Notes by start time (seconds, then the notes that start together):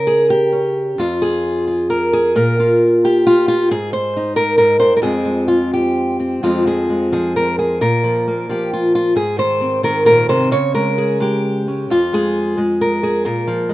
Already playing: C#3 A#4
0.07 G#4
0.30 G4
0.52 C#4
0.98 F2 F4
1.22 G#4
1.67 F4
1.90 A#4
2.13 G#4
2.36 A#2 A#4
2.60 F4
3.05 G4
3.27 F4
3.48 F4
3.71 G#2 G#4
3.93 C5
4.17 D#4
4.36 A#4
4.58 G#2 A#4
4.80 G2 C5
4.97 A#4
5.02 F2 F3 G#3 C4 G#4
5.25 G#3
5.48 F4
5.73 G4
6.20 C4
6.43 F2 F3 G#3 C4 F4
6.66 F3 G#4
6.89 G#3
7.12 F3 G#4
7.36 A#4
7.59 G#4
7.81 A#2 A#4
8.04 F3
8.28 A#3
8.49 F3 G4
8.73 F4
8.95 F4
9.16 G#2 G#4
9.38 D#3 C5
9.61 C4
9.83 D#3 A#4
10.05 A#2 A#4
10.29 C3 C5
10.51 C#3 C#5
10.74 G#3 A#4
10.98 G#4
11.20 G#3 G4
11.68 C#4
11.90 F2 F4
12.13 G#3 G#4
12.58 G#3
12.81 A#4
13.03 G#4
13.25 A#2 A#4
13.47 F3
13.69 G#3